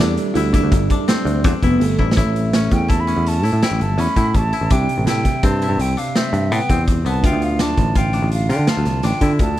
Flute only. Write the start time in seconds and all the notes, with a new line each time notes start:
2.73 G5
2.89 A5
3.00 B5
3.28 A5
3.64 G5
3.82 A5
4.00 B5
4.36 A5
4.72 G5
5.08 G5
5.45 A5
5.81 G5
5.98 F5
6.18 E5
6.53 G5
7.08 A5
7.26 G5
7.44 F5
7.62 A5
7.98 G5
8.34 F5
8.51 G5
8.70 A5
9.06 G5
9.41 A5